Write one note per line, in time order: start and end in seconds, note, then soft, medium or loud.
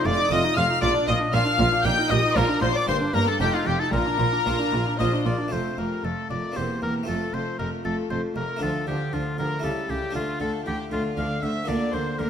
0.00 0.17 A3 medium
0.00 0.17 D#4 medium
0.00 0.18 F4 medium
0.06 0.14 F1 medium
0.06 0.29 F2 medium
0.06 0.14 F2 medium
0.06 0.19 F4 medium
0.06 0.31 D5 loud
0.06 0.31 D6 loud
0.18 0.31 D#4 medium
0.31 0.39 F1 medium
0.31 0.54 F2 medium
0.31 0.39 F2 medium
0.31 0.68 A3 medium
0.31 0.68 D#4 medium
0.31 0.43 F4 medium
0.31 0.69 F4 medium
0.31 0.57 D#5 loud
0.31 0.56 D#5 loud
0.31 0.57 D#6 loud
0.43 0.56 D#4 medium
0.56 0.64 F1 medium
0.56 0.80 F2 medium
0.56 0.65 F2 medium
0.56 0.69 F4 medium
0.56 0.65 F5 loud
0.56 0.81 F5 loud
0.56 0.82 F6 loud
0.70 0.83 D#4 medium
0.81 0.90 A#1 loud
0.81 1.05 A#2 medium
0.81 0.90 A#2 loud
0.81 0.95 F4 medium
0.81 0.93 D5 loud
0.81 1.07 D5 loud
0.81 0.89 D6 loud
0.95 1.08 D4 medium
1.08 1.16 A#1 medium
1.08 1.31 A#2 medium
1.08 1.16 A#2 medium
1.08 1.21 F4 medium
1.08 1.16 D#5 loud
1.08 1.36 D#5 loud
1.08 1.16 D#6 loud
1.20 1.33 D4 medium
1.33 1.41 A#1 medium
1.33 1.41 A#2 medium
1.33 1.57 A#2 medium
1.33 1.70 A#3 medium
1.33 1.71 D4 medium
1.33 1.45 F4 medium
1.33 1.71 F4 medium
1.33 1.84 F5 loud
1.33 1.87 F5 loud
1.33 1.84 F6 loud
1.46 1.59 D4 medium
1.59 1.67 A#1 loud
1.59 1.67 A#2 loud
1.59 1.82 A#2 medium
1.59 1.72 F4 medium
1.72 1.85 D4 medium
1.84 1.93 A#1 medium
1.84 1.92 A#2 medium
1.84 2.08 A#2 medium
1.84 2.32 A#3 medium
1.84 2.33 D#4 medium
1.84 1.97 G4 medium
1.84 2.33 A#4 medium
1.84 2.10 G5 loud
1.84 2.12 G5 loud
1.84 2.10 G6 loud
1.98 2.11 D#4 medium
2.10 2.18 A#1 medium
2.10 2.33 A#2 medium
2.10 2.18 A#2 medium
2.10 2.24 G4 medium
2.10 2.36 D#5 loud
2.10 2.38 D#5 loud
2.10 2.36 D#6 loud
2.24 2.37 D#4 medium
2.36 2.44 A#1 loud
2.36 2.44 A#2 loud
2.36 2.59 A#2 medium
2.36 2.84 A#3 medium
2.36 2.84 D4 medium
2.36 2.49 F4 medium
2.36 2.61 A#4 loud
2.36 2.62 A#4 loud
2.36 2.85 A#4 medium
2.36 2.62 A#5 loud
2.50 2.62 D4 medium
2.62 2.70 A#1 medium
2.62 2.70 A#2 medium
2.62 2.85 A#2 medium
2.62 2.75 F4 medium
2.62 2.68 C5 loud
2.62 2.75 C5 loud
2.62 2.75 C6 loud
2.75 2.88 D4 medium
2.75 2.88 D5 loud
2.75 2.88 D6 loud
2.87 2.96 G1 medium
2.87 2.95 G2 medium
2.87 3.11 G2 medium
2.87 3.36 A#3 medium
2.87 3.00 A#3 medium
2.87 3.36 D4 medium
2.87 3.37 A#4 medium
2.87 2.96 C5 loud
2.87 3.16 C5 loud
2.87 2.96 C6 loud
3.02 3.14 D4 medium
3.13 3.22 G1 medium
3.13 3.21 G2 medium
3.13 3.38 G2 medium
3.13 3.27 A#3 medium
3.13 3.27 A#4 medium
3.13 3.27 A#4 loud
3.13 3.27 A#5 loud
3.28 3.40 D4 medium
3.28 3.41 A4 loud
3.28 3.40 A4 loud
3.28 3.40 A5 loud
3.39 3.48 F1 medium
3.39 3.47 F2 medium
3.39 3.64 F2 medium
3.39 3.89 C4 medium
3.39 3.89 D#4 medium
3.39 3.53 F4 medium
3.39 3.56 G4 loud
3.39 3.46 G4 loud
3.39 3.90 A4 medium
3.39 3.53 G5 loud
3.54 3.67 D#4 medium
3.54 3.69 F4 medium
3.54 3.60 F4 medium
3.54 3.67 F5 loud
3.66 3.75 F1 medium
3.66 3.74 F2 medium
3.66 3.90 F2 medium
3.66 3.80 F4 medium
3.66 3.81 G4 loud
3.66 3.80 G4 medium
3.66 3.72 G5 loud
3.80 3.93 D#4 medium
3.80 3.92 A4 medium
3.80 3.85 A4 medium
3.80 3.93 A5 loud
3.92 4.01 A#1 medium
3.92 4.00 A#2 medium
3.92 4.17 A#2 medium
3.92 4.06 F4 medium
3.92 4.98 A#4 loud
3.92 4.98 A#5 loud
4.07 4.20 D4 medium
4.19 4.28 A#1 medium
4.19 4.27 A#2 medium
4.19 4.44 A#2 medium
4.19 4.33 F4 medium
4.33 4.46 D4 medium
4.46 4.55 A#1 medium
4.46 4.54 A#2 medium
4.46 4.71 A#2 medium
4.46 4.85 A#3 medium
4.46 4.85 D4 medium
4.46 4.59 F4 medium
4.46 4.86 F4 medium
4.60 4.73 D4 medium
4.72 4.81 A#1 medium
4.72 4.80 A#2 medium
4.72 4.97 A#2 medium
4.72 4.87 F4 medium
4.87 5.00 D4 medium
4.99 5.07 A#1 medium
4.99 5.07 A#2 medium
4.99 5.24 A#2 medium
4.99 5.38 A#3 medium
4.99 5.38 D4 medium
4.99 5.12 F4 medium
4.99 5.38 F4 medium
4.99 5.25 C5 medium
4.99 5.11 D#5 medium
4.99 5.24 D#5 medium
5.13 5.26 D4 medium
5.25 5.34 A#1 medium
5.25 5.33 A#2 medium
5.25 5.50 A#2 medium
5.25 5.39 F4 medium
5.25 5.53 A#4 medium
5.25 5.54 D5 medium
5.25 5.53 D5 medium
5.39 5.52 D4 medium
5.48 5.60 F2 soft
5.48 6.51 A3 soft
5.48 6.52 C4 soft
5.48 6.53 F4 soft
5.52 5.60 F1 medium
5.52 5.76 F2 soft
5.52 5.77 A3 soft
5.52 5.79 A4 medium
5.52 5.77 C5 medium
5.52 5.79 C5 medium
5.78 5.86 F1 soft
5.78 5.86 F2 soft
5.78 6.02 F2 soft
5.78 6.03 A3 soft
5.78 6.04 G4 soft
5.78 6.06 A#4 medium
5.78 6.05 A#4 medium
6.04 6.12 F1 soft
6.04 6.12 F2 soft
6.04 6.28 F2 soft
6.04 6.29 A3 soft
6.04 6.31 F4 soft
6.04 6.30 A4 medium
6.04 6.31 A4 soft
6.30 6.38 F1 soft
6.30 6.38 F2 soft
6.30 6.54 F2 soft
6.30 6.56 A3 soft
6.30 6.56 A#4 medium
6.30 6.58 D5 medium
6.30 6.57 D5 medium
6.52 7.04 A#3 soft
6.52 7.04 C4 soft
6.52 7.06 G4 soft
6.56 6.64 E1 soft
6.56 6.80 E2 soft
6.56 6.65 E2 soft
6.56 6.82 A#3 soft
6.56 6.65 G4 soft
6.56 6.82 C5 medium
6.56 6.83 C5 soft
6.82 6.90 E1 soft
6.82 7.06 E2 soft
6.82 6.90 E2 soft
6.82 7.08 A#3 soft
6.82 7.08 G4 medium
6.82 6.94 A#4 medium
6.82 7.08 A#4 medium
7.03 8.55 A3 soft
7.03 8.56 C4 soft
7.03 8.57 F4 soft
7.08 7.16 F1 medium
7.08 7.31 F2 soft
7.08 7.16 F2 medium
7.08 7.34 A3 soft
7.08 7.34 F4 medium
7.08 7.35 A4 medium
7.08 7.34 A4 medium
7.34 7.42 F1 soft
7.34 7.57 F2 soft
7.34 7.42 F2 soft
7.34 7.59 A3 soft
7.34 7.59 A4 medium
7.34 7.58 C5 medium
7.34 7.59 C5 medium
7.59 7.68 F1 medium
7.59 7.83 F2 soft
7.59 7.68 F2 soft
7.59 7.84 A3 soft
7.59 7.68 G4 medium
7.59 7.71 A#4 medium
7.59 7.85 A#4 medium
7.85 7.93 F1 medium
7.85 7.93 F2 soft
7.85 8.08 F2 soft
7.85 8.10 A3 soft
7.85 8.10 F4 medium
7.85 7.97 A4 medium
7.85 8.10 A4 medium
8.10 8.19 F1 medium
8.10 8.34 F2 soft
8.10 8.19 F2 medium
8.10 8.35 A3 soft
8.10 8.36 A4 medium
8.10 8.22 C5 medium
8.10 8.19 C5 medium
8.36 8.44 F1 medium
8.36 8.44 F2 medium
8.36 8.59 F2 soft
8.36 8.61 A3 soft
8.36 8.44 G4 medium
8.36 8.61 A#4 medium
8.36 8.62 A#4 medium
8.57 9.58 A3 soft
8.57 9.59 D4 soft
8.57 9.60 F4 soft
8.61 8.70 D2 medium
8.61 8.85 D3 soft
8.61 8.70 D3 medium
8.61 8.87 F3 medium
8.61 8.69 F4 medium
8.61 8.87 A4 medium
8.61 8.88 A4 medium
8.87 8.95 D2 soft
8.87 9.10 D3 soft
8.87 8.95 D3 soft
8.87 9.12 F3 soft
8.87 8.96 E4 medium
8.87 9.15 G4 medium
8.87 9.13 G4 medium
9.13 9.21 D2 medium
9.13 9.36 D3 soft
9.13 9.21 D3 medium
9.13 9.37 F3 soft
9.13 9.21 D4 medium
9.13 9.38 F4 medium
9.13 9.22 F4 medium
9.38 9.46 D2 medium
9.38 9.61 D3 soft
9.38 9.47 D3 medium
9.38 9.63 F3 soft
9.38 9.47 G4 medium
9.38 9.64 A#4 medium
9.38 9.66 A#4 medium
9.59 10.09 A3 soft
9.59 10.12 E4 soft
9.59 10.13 G4 soft
9.64 9.72 C#2 medium
9.64 9.72 C#3 medium
9.64 9.87 C#3 soft
9.64 9.88 G3 soft
9.64 9.89 E4 medium
9.64 9.89 A4 medium
9.64 9.92 A4 medium
9.89 9.97 C#2 medium
9.89 10.13 C#3 soft
9.89 9.98 C#3 medium
9.89 10.15 G3 soft
9.89 9.98 E4 medium
9.89 10.15 G4 medium
10.10 11.62 A3 soft
10.10 11.63 D4 soft
10.10 11.63 F4 soft
10.15 10.23 D2 medium
10.15 10.23 D3 medium
10.15 10.38 D3 soft
10.15 10.39 A3 medium
10.15 10.24 D4 medium
10.15 10.40 F4 medium
10.15 10.41 F4 medium
10.40 10.48 D2 medium
10.40 10.63 D3 soft
10.40 10.49 D3 medium
10.40 10.65 A3 soft
10.40 10.66 F4 medium
10.40 10.66 A4 medium
10.40 10.52 A4 medium
10.66 10.74 D2 soft
10.66 10.74 D3 medium
10.66 10.89 D3 soft
10.66 10.90 A3 soft
10.66 10.92 E4 medium
10.66 10.91 G4 medium
10.66 10.79 G4 medium
10.91 10.99 D2 medium
10.91 10.99 D3 medium
10.91 11.15 D3 soft
10.91 11.16 A3 soft
10.91 11.17 D4 medium
10.91 11.17 F4 medium
10.91 11.04 F4 medium
11.17 11.25 D2 medium
11.17 11.25 D3 medium
11.17 11.40 D3 soft
11.17 11.42 A3 medium
11.17 11.43 D5 medium
11.17 11.43 F5 medium
11.17 11.44 F5 medium
11.43 11.51 D2 medium
11.43 11.51 D3 medium
11.43 11.66 D3 soft
11.43 11.68 A3 soft
11.43 11.69 C5 medium
11.43 11.68 E5 medium
11.43 11.70 E5 medium
11.64 12.30 A#3 soft
11.64 12.30 D4 soft
11.64 12.30 F4 soft
11.68 11.76 D2 medium
11.68 11.76 D3 medium
11.68 11.91 D3 soft
11.68 11.93 A#3 medium
11.68 11.93 A#4 medium
11.68 11.94 D5 medium
11.68 11.96 D5 medium
11.93 12.02 D2 medium
11.93 12.16 D3 medium
11.93 12.01 D3 medium
11.93 12.18 A#3 medium
11.93 12.19 A4 medium
11.93 12.19 C5 medium
11.93 12.20 C5 medium
12.19 12.27 D2 medium
12.19 12.27 D3 medium
12.19 12.30 D3 soft
12.19 12.30 A#3 medium
12.19 12.30 F4 medium
12.19 12.30 A#4 medium